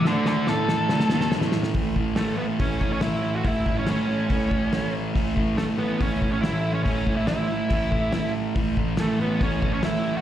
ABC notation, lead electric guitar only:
X:1
M:4/4
L:1/16
Q:1/4=141
K:A
V:1 name="Lead electric guitar"
[Ad]2 [Ad]2 A8 z4 | z4 A,2 B,2 C3 C E3 F | E3 C C8- C2 z2 | z4 A,2 B,2 C3 C E3 C |
C3 E E8- E2 z2 | z4 A,2 B,2 C3 C E3 F |]